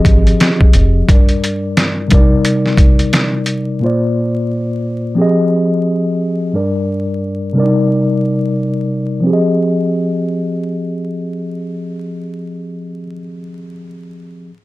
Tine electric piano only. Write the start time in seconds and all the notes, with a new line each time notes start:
Already playing: F3 C4 G4 G#4 D#5
1.08 G2 G3 D4 A#4 D5
2.08 C3 G3 D4
2.13 A#4 D5
2.17 D#4
3.79 A#2 A#3 F4
3.84 C5 D5
5.15 F3 C4 G4
5.20 G#4 D#5
6.53 G2 G3 D4 A#4 D5
7.53 C3 G3 D4
7.58 A#4 D5
7.63 D#4
9.20 F3 C4
9.27 G4 G#4
9.33 D#5